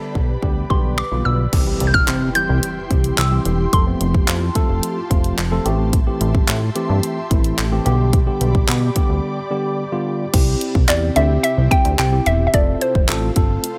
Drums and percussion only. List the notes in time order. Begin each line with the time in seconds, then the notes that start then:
0.15 kick
0.43 kick
0.70 kick
0.98 finger snap
1.53 kick, closed hi-hat, crash
1.80 closed hi-hat
1.94 kick
2.08 clap, closed hi-hat
2.35 closed hi-hat
2.63 closed hi-hat
2.91 kick, closed hi-hat
3.04 closed hi-hat
3.18 clap, closed hi-hat
3.45 closed hi-hat
3.73 kick, closed hi-hat
4.01 closed hi-hat
4.14 kick
4.28 clap, closed hi-hat
4.55 kick, closed hi-hat
4.83 closed hi-hat
5.11 kick, closed hi-hat
5.24 closed hi-hat
5.38 clap, closed hi-hat
5.66 closed hi-hat
5.93 kick, closed hi-hat
6.21 closed hi-hat
6.35 kick
6.48 clap, closed hi-hat
6.76 closed hi-hat
7.03 closed hi-hat
7.31 kick, closed hi-hat
7.44 closed hi-hat
7.58 clap, closed hi-hat
7.86 closed hi-hat
8.13 kick, closed hi-hat
8.41 closed hi-hat
8.55 kick
8.68 clap, closed hi-hat
8.96 kick, closed hi-hat
10.34 kick, closed hi-hat, crash
10.61 closed hi-hat
10.75 kick
10.89 clap, closed hi-hat
11.16 closed hi-hat
11.44 closed hi-hat
11.71 kick, closed hi-hat
11.85 closed hi-hat
11.99 clap, closed hi-hat
12.26 closed hi-hat
12.54 kick, closed hi-hat
12.81 closed hi-hat
12.95 kick
13.09 clap, closed hi-hat
13.36 kick, closed hi-hat
13.64 closed hi-hat